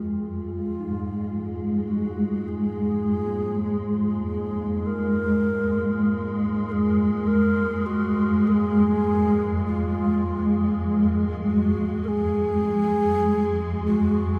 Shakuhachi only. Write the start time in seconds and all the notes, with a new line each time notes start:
0.07 F4
1.87 F#4
2.48 G#4
4.27 G#4
4.86 A#4
6.68 G#4 A#4
7.27 A#4
7.86 F#4
8.48 A#4
8.52 G#4
9.66 F4
11.47 F#4
12.04 G#4 A#4
13.86 F#4